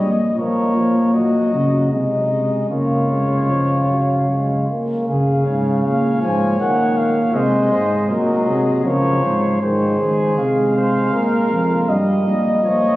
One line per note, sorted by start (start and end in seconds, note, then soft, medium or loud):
0.00 0.37 A#2 medium
0.00 0.11 G3 medium
0.00 0.36 D#5 medium
0.37 1.50 A#2 medium
0.37 0.73 F3 medium
0.37 1.10 A#4 medium
0.37 1.16 C#5 medium
0.75 1.13 F3 medium
1.14 1.52 F#3 medium
1.14 1.90 F#4 medium
1.14 1.90 D#5 medium
1.52 1.93 C#3 medium
1.52 1.90 F#3 medium
1.91 2.69 C3 medium
1.91 2.29 G#3 medium
1.91 2.68 D#4 medium
1.91 2.68 D#5 medium
2.30 2.69 G#3 medium
2.69 4.65 C#3 medium
2.69 3.11 A#3 medium
2.69 4.65 F4 medium
2.69 4.65 C#5 medium
3.09 3.50 G#3 medium
3.49 3.89 F3 medium
3.89 4.28 F#3 medium
4.29 4.68 G#3 medium
4.70 5.08 A#3 medium
5.08 6.18 C#3 medium
5.08 5.44 C#3 medium
5.08 5.44 G#4 medium
5.08 5.80 F5 medium
5.46 5.84 G#2 medium
5.46 7.31 C#5 medium
5.84 6.24 A#2 medium
5.84 6.21 F5 medium
6.22 6.59 G#2 medium
6.22 6.59 F3 medium
6.22 6.59 G#5 medium
6.60 7.33 A#2 medium
6.60 7.17 D#3 medium
6.60 6.99 F#5 medium
6.97 7.36 F5 medium
7.34 7.72 C3 medium
7.34 8.08 G#3 loud
7.34 7.71 C5 medium
7.34 8.10 D#5 medium
7.72 8.12 G#2 medium
7.72 8.09 C5 medium
8.10 8.47 A#2 medium
8.10 8.84 F#3 medium
8.10 8.47 A#4 medium
8.10 8.84 D#5 medium
8.47 8.85 C3 medium
8.47 8.84 G#4 medium
8.85 9.23 C#3 medium
8.85 9.60 F3 medium
8.85 9.25 A#4 medium
8.85 9.60 C#5 medium
9.23 9.61 G#2 medium
9.23 9.62 C5 medium
9.61 9.97 G#2 medium
9.61 9.97 D#3 medium
9.61 10.72 G#4 loud
9.61 10.34 C5 medium
10.00 10.38 D#3 medium
10.00 11.85 G#3 medium
10.38 11.12 C3 medium
10.38 11.91 F5 medium
10.76 11.13 C5 medium
11.13 11.50 A#2 medium
11.13 11.88 A#4 medium
11.51 11.91 F2 medium
11.89 12.28 G2 medium
11.89 12.25 G3 medium
11.89 12.63 D#5 loud
11.89 12.96 D#5 medium
12.26 12.64 A#2 medium
12.26 12.63 G3 medium
12.64 12.96 A#2 medium
12.64 12.96 F3 medium
12.64 12.96 C#5 medium